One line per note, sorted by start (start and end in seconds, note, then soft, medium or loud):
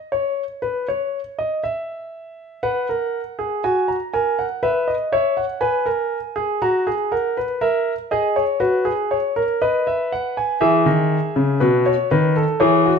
0.12 0.43 C#5 medium
0.62 0.86 B4 medium
0.88 1.19 C#5 medium
1.39 1.62 D#5 medium
1.64 2.60 E5 medium
2.63 2.87 B4 medium
2.63 3.60 F#5 medium
2.89 3.20 A#4 medium
3.39 3.62 G#4 medium
3.64 3.95 F#4 medium
3.64 3.88 G#5 medium
3.88 4.12 A#5 medium
4.13 4.45 A#4 medium
4.13 4.38 G#5 medium
4.39 4.63 F#5 medium
4.63 4.94 B4 medium
4.63 4.87 E5 medium
4.88 5.12 D#5 medium
5.12 5.44 C#5 medium
5.12 5.37 E5 medium
5.37 5.62 F#5 medium
5.61 5.86 B4 medium
5.61 6.58 G#5 medium
5.86 6.17 A#4 medium
6.36 6.61 G#4 medium
6.62 6.86 F#4 medium
6.62 6.93 A#5 medium
6.87 7.11 G#4 medium
7.12 7.36 A#4 medium
7.12 7.43 F#5 medium
7.37 7.61 B4 medium
7.61 7.92 A#4 medium
7.61 7.92 E5 medium
8.11 8.42 G#4 medium
8.11 8.35 D#5 medium
8.36 8.60 C#5 medium
8.60 8.85 F#4 medium
8.60 8.91 B4 medium
8.85 9.16 G#4 medium
9.11 9.42 C#5 medium
9.36 9.60 A#4 medium
9.62 10.58 B4 medium
9.62 9.85 D#5 medium
9.87 10.10 E5 medium
10.12 10.36 F#5 medium
10.37 10.61 G#5 medium
10.61 10.85 E3 medium
10.61 11.58 G#4 medium
10.61 12.57 E5 medium
10.86 11.17 D#3 medium
11.36 11.60 C#3 medium
11.60 11.92 B2 medium
11.60 11.85 B4 medium
11.86 12.10 C#5 medium
12.11 12.42 D#3 medium
12.11 12.35 B4 medium
12.36 12.60 A4 medium
12.60 12.91 E3 medium
12.60 12.85 G#4 medium
12.60 12.99 C#5 medium
12.86 12.99 F#4 medium